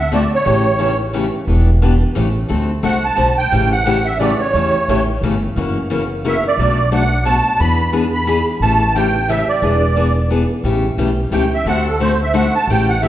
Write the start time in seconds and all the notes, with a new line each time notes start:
Already playing: D2
0.00 E5
0.12 D3 A3 C4 F#4 A4 D5
0.35 C#5
0.45 A1 C#3 E3 A3 C#4 G4
0.79 C#3 E3 A3 C#4 G4
1.13 C#3 E3 A3 C#4 G4
1.47 E1 E3 B3 D4 G4
1.82 E3 B3 D4 G4
2.15 A1 C#3 E3 A3 C#4 G4
2.48 D2 D3 A3 C4 F#4 A4
2.83 C2 D3 A3 C4 F#4 A4 F#5
3.05 A5
3.16 B1 D3 A3 C4 F#4 A4
3.38 G5
3.52 A1 C#3 E3 A3 C#4 G4
3.72 F#5
3.86 C#3 E3 A3 C#4 G4
4.05 E5
4.19 C#3 E3 A3 C#4 G4 D5
4.40 C#5
4.54 E2 C#3 E3 A3 C#4 G4
4.88 A1 C#3 E3 A3 C#4 G4
5.21 G1 C#3 E3 A3 C#4 G4
5.56 F#1 C#3 E3 A#3 C#4 F#4
5.90 C#3 E3 A#3 C#4 F#4
6.25 C#3 E3 A#3 C#4 F#4 E5
6.47 D5
6.58 B1 B2 F#3 A3 D4 F#4
6.92 B2 F#3 A3 D4 F#4 F#5
7.25 B2 F#3 A3 D4 F#4 A5
7.60 E2 E3 B3 D4 G#4 B5
7.93 E3 B3 D4 G#4
8.14 B5
8.27 E3 B3 D4 G#4
8.60 A1 C#3 E3 A3 C#4 G4 A5
8.95 C#3 E3 A3 C#4 G4 G5
9.29 C#3 E3 A3 C#4 G4 E5
9.48 D5
9.62 E1 E3 B3 D4 G#4
9.96 E3 B3 D4 G#4
10.30 E3 B3 D4 G#4
10.64 A1 C#3 E3 A3 C#4 G4
10.97 B1 C#3 E3 A3 C#4 G4
11.31 C#2 C#3 E3 A3 C#4 G4 G5
11.54 E5
11.65 D2 D3 A3 C4 F#4 A4 F#5
11.87 A4
12.00 D3 A3 C4 F#4 A4 C5
12.23 E5
12.33 D3 A3 C4 F#4 A4 F#5
12.55 A5
12.67 A1 C#3 E3 A3 C#4 G4 G5
12.89 F#5
13.02 C#3 E3 A3 C#4 G4 E5